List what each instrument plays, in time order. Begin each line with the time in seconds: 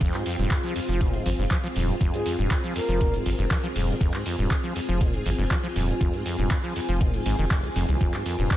Already playing: string machine C4 F4, ambient pad F4 C5 G5
0.01 sub bass F1, acid bass F2, string machine G#4, kick, closed hi-hat
0.14 acid bass G#2, clap, closed hi-hat
0.26 acid bass F2, open hi-hat
0.39 sub bass D#1, acid bass G2
0.51 acid bass F2, kick, clap, closed hi-hat
0.64 acid bass F3, closed hi-hat
0.76 acid bass F2, open hi-hat
0.89 sub bass F1, acid bass F3, closed hi-hat
1.01 acid bass A#2, kick, closed hi-hat
1.14 acid bass G#2, closed hi-hat
1.26 sub bass G#1, acid bass F2, open hi-hat
1.39 sub bass F1, acid bass G2
1.51 acid bass F3, kick, clap, closed hi-hat
1.64 acid bass F3, closed hi-hat
1.76 sub bass D#1, acid bass F2, open hi-hat
1.89 acid bass G#2, closed hi-hat
2.01 sub bass F1, acid bass F2, kick, closed hi-hat
2.14 acid bass G#2, soft synth lead G#4, closed hi-hat
2.26 acid bass F2, open hi-hat
2.39 sub bass D#1, acid bass G2, closed hi-hat
2.51 acid bass F2, kick, clap, closed hi-hat
2.64 acid bass F3, closed hi-hat
2.76 acid bass F2, soft synth lead A#4, open hi-hat
2.82 ambient pad G#5
2.89 sub bass F1, acid bass F3, closed hi-hat
3.01 acid bass A#2, kick, closed hi-hat
3.14 acid bass G#2, closed hi-hat
3.26 sub bass G#1, acid bass F2, open hi-hat
3.39 sub bass F1, acid bass G2
3.51 acid bass F3, kick, clap, closed hi-hat
3.64 acid bass F3, closed hi-hat
3.76 sub bass D#1, acid bass F2, open hi-hat
3.89 acid bass G#2, closed hi-hat
4.01 sub bass F1, acid bass F2, kick, closed hi-hat
4.14 acid bass G#2, clap, closed hi-hat
4.26 acid bass F2, open hi-hat
4.38 sub bass D#1, acid bass G2
4.51 acid bass F2, kick, clap, closed hi-hat
4.63 acid bass F3, closed hi-hat
4.76 acid bass F2, open hi-hat
4.88 sub bass F1, acid bass F3, closed hi-hat
5.01 acid bass A#2, kick, closed hi-hat
5.13 acid bass G#2, closed hi-hat
5.26 sub bass G#1, acid bass F2, open hi-hat
5.39 sub bass F1, acid bass G2
5.51 acid bass F3, kick, clap, closed hi-hat
5.63 acid bass F3, closed hi-hat
5.76 sub bass D#1, acid bass F2, open hi-hat
5.89 acid bass G#2, closed hi-hat
6.01 sub bass F1, acid bass F2, kick, closed hi-hat
6.14 acid bass G#2, closed hi-hat
6.26 acid bass F2, open hi-hat
6.39 sub bass D#1, acid bass G2, closed hi-hat
6.51 acid bass F2, kick, clap, closed hi-hat
6.64 acid bass F3, closed hi-hat
6.76 acid bass F2, open hi-hat
6.89 sub bass F1, acid bass F3, closed hi-hat
7.01 acid bass A#2, kick, closed hi-hat
7.14 acid bass G#2, closed hi-hat
7.26 sub bass G#1, acid bass G#2, open hi-hat
7.39 sub bass F1, acid bass D#3
7.51 acid bass F1, kick, clap, closed hi-hat
7.64 acid bass F2, closed hi-hat
7.76 sub bass F1, acid bass F2, open hi-hat
7.89 sub bass C2, acid bass D#2, closed hi-hat
8.01 sub bass F1, acid bass F2, string machine A#4, kick, closed hi-hat
8.14 acid bass G#2, clap, closed hi-hat
8.26 acid bass F2, open hi-hat
8.39 sub bass D#1, acid bass G2
8.51 acid bass F2, kick, clap, closed hi-hat